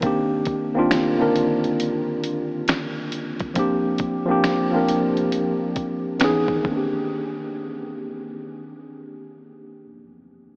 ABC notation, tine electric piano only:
X:1
M:4/4
L:1/16
Q:"Swing 16ths" 1/4=68
K:Cm
V:1 name="Tine electric piano"
[E,B,CDG]3 [E,B,CDF]2 [D,E,B,CDB]6- [D,E,B,CDB] z4 | [F,B,CDG]3 [F,B,CDG]2 [F,B,CDB]6- [F,B,CDB] [_F,_C_DEA]2 [E,B,=C=DG]2- | [E,B,CDG]16 |]